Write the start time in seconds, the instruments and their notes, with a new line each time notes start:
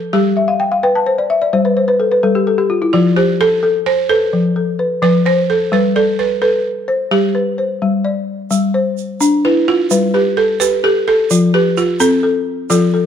Already playing: balafon A4
0.13 balafon G3 G4
0.37 balafon E5
0.48 balafon F5
0.60 balafon G5
0.72 balafon F5
0.83 balafon B4 G5
0.95 balafon A5
1.06 balafon C5
1.18 balafon D5
1.30 balafon E5
1.42 balafon D5
1.53 balafon G3 C5
1.65 balafon B4
1.77 balafon C5
1.88 balafon B4
2.00 balafon A4
2.12 balafon B4
2.23 balafon G3 A4
2.35 balafon G4
2.47 balafon A4
2.58 balafon G4
2.70 balafon F4
2.82 balafon E4
2.93 balafon F3 F4
3.16 balafon G4 C5
3.41 balafon A4
3.63 balafon A4
3.86 balafon C5
4.09 balafon A4 B4
4.33 balafon F3
4.56 balafon A4
4.79 balafon B4
5.02 balafon F3 B4
5.26 balafon C5
5.50 balafon A4
5.72 balafon G3 B4
5.96 balafon A4 D5
6.19 balafon B4
6.42 balafon A4 B4
6.88 balafon C5
7.11 balafon G3 G4
7.35 balafon B4
7.58 balafon C5
7.82 balafon G3
8.05 balafon D5
8.51 balafon G3, shaker
8.74 balafon C5
8.98 shaker
9.21 balafon D4, shaker
9.45 balafon E4 B4
9.68 balafon F4
9.91 balafon G3 B4, shaker
10.14 balafon G4 B4
10.37 balafon A4
10.60 balafon G4 B4, shaker
10.84 balafon G4 A4
11.08 balafon A4
11.31 balafon F3 F4, shaker
11.54 balafon G4 B4
11.77 balafon F4, shaker
12.00 balafon C4 A4, shaker
12.23 balafon A4
12.70 balafon F3 F4 A4, shaker
12.94 balafon A4